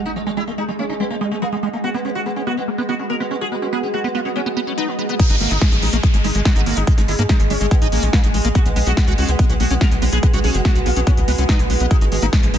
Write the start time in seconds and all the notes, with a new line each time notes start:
Already playing: G#3 G#4 D#5 G#5, impact
0.06 B3 D#4
0.16 F#3 G#3
0.26 G#3
0.37 G#3 E4
0.47 G#3 A#3
0.58 G#3 D#4
0.68 G#3
0.79 A#3 C#4
0.89 G#3 D#4
1.00 G#3 B3
1.10 G#3 A#3
1.21 G#3
1.31 G#3 B3
1.42 F#3 A#3
1.52 G#3
1.63 G#3
1.73 G#3 A#3
1.84 B3 F#4
1.94 B3
2.05 B3 C#4
2.15 F#4 F#5
2.26 B3
2.36 B3 C#4 B4
2.47 B3 F#4
2.57 B3 D#4
2.68 A#3
2.78 B3
2.89 B3 F#4
2.99 B3 C#4
3.10 B3 A#4
3.20 B3
3.31 B3 C#4
3.41 F#4 G#4
3.52 B3
3.62 B3 C#4
3.73 B3 G#4
3.83 B3 D#4
3.94 A#3 F#4
4.04 B3
4.15 B3 F4
4.25 B3 C#4
4.36 B3 C#4
4.46 B3
4.57 B3
4.67 B3 C#4
4.78 B3 D#4
4.88 B3
4.99 B3
5.09 B3
5.20 G#3 D#4 G#4, kick, closed hi-hat, crash, downlifter
5.30 G#1 G#3 D#4, closed hi-hat
5.36 D#5
5.40 G#1 G#3 A#3, open hi-hat
5.51 G#1 G#3 D#4, closed hi-hat
5.61 G#3, kick, snare, closed hi-hat
5.72 A#1 G#3 D#4, closed hi-hat
5.82 A#1 G#3 D#4, open hi-hat
5.93 A#1 G#3 A#3, closed hi-hat
6.03 G#3, kick, closed hi-hat
6.14 G#1 G#3, closed hi-hat
6.24 G#1 G#3 D#4, open hi-hat
6.35 G#1 G#3, closed hi-hat
6.42 G#3 F#4 G#5, kick, snare, closed hi-hat
6.56 G#1 G#3 D#4, closed hi-hat
6.66 G#1 G#3 A#3, open hi-hat
6.77 G#1 G#3 D#4, closed hi-hat
6.87 G#3, kick, closed hi-hat
6.98 G#1 G#3 D#4, snare, closed hi-hat
7.08 G#1 G#3 E4, open hi-hat
7.19 G#2 G#3 A#3, closed hi-hat
7.29 G#3 D#4, kick, snare, closed hi-hat
7.40 G#1 G#3, closed hi-hat
7.50 G#1 G#3 C#4, open hi-hat
7.61 G#1 G#3, closed hi-hat
7.71 G#3 B3, kick, closed hi-hat
7.82 A#1 G#3 D#4, closed hi-hat
7.92 A#1 G#3 A#3, open hi-hat
8.03 A#1 G#3, closed hi-hat
8.13 G#3 A#3, kick, snare, closed hi-hat
8.24 A#1 G#3 D#4, closed hi-hat
8.34 A#1 G#3, open hi-hat
8.45 A#1 G#3 A#3, closed hi-hat
8.55 B3 F#4, kick, closed hi-hat
8.66 B1 B3, closed hi-hat
8.76 B1 B3, open hi-hat
8.87 B1 B3 F#4, closed hi-hat
8.97 B3, kick, snare, closed hi-hat
9.02 F#5
9.08 C#2 B3 F#4, closed hi-hat
9.14 C#2 C#4 F#4 B4, open hi-hat
9.29 C#2 B3, closed hi-hat
9.39 B3, kick, closed hi-hat
9.50 B1 B3 F#4, closed hi-hat
9.60 B1 B3 F#4, open hi-hat
9.71 B1 B3 C#4, closed hi-hat
9.81 B3 A#4, kick, snare, closed hi-hat
9.92 B1 B3, closed hi-hat
10.02 B1 B3, open hi-hat
10.12 B1 B3 G#4, closed hi-hat
10.23 B3, kick, closed hi-hat
10.33 B1 B3 F#4, snare, closed hi-hat
10.44 B1 C#4 G#4, open hi-hat
10.54 F#1 B3, closed hi-hat
10.65 B3 F#4, kick, snare, closed hi-hat
10.75 B1 B3 F#4, closed hi-hat
10.86 B1 B3 F4, open hi-hat
10.96 B1 B3 C#4, closed hi-hat
11.07 B3 C#4, kick, closed hi-hat
11.17 C#2 B3, closed hi-hat
11.28 C#2 B3, open hi-hat
11.38 C#2 B3 C#4, closed hi-hat
11.49 B3 D#4, kick, snare, closed hi-hat
11.59 B1 B3, closed hi-hat
11.70 B1 B3, open hi-hat
11.80 B1 B3, closed hi-hat
11.91 G#3 D#4 G#4, kick, closed hi-hat
12.01 G#1 G#3 D#4, closed hi-hat
12.06 D#5
12.12 G#1 G#3, open hi-hat
12.22 G#1 A#3 D#4, closed hi-hat
12.33 G#3, kick, snare, closed hi-hat
12.43 A#1 G#3, closed hi-hat
12.54 A#1 G#3 D#4, open hi-hat